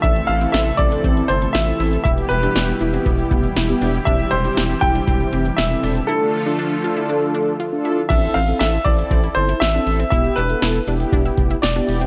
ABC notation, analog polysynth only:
X:1
M:4/4
L:1/16
Q:1/4=119
K:Am
V:1 name="Analog polysynth"
[CEA]2 z [CEA]2 z [CEA]4- [CEA] z2 [CEA]2 z | [B,EG]2 z [B,EG]2 z [B,EG]4- [B,EG] z2 [B,EG]2 z | [CEG]2 z [CEG]2 z [CEG]4- [CEG] z2 [CEA]2 z | [DFA]2 z [DFA]2 z [DFA]4- [DFA] z2 [DFA]2 z |
[CEA]2 z [CEA]2 z [CEA]4- [CEA] z2 [CEA]2 z | [B,EG]2 z [B,EA]2 z [B,EG]4- [B,EG] z2 [B,EG]2 z |]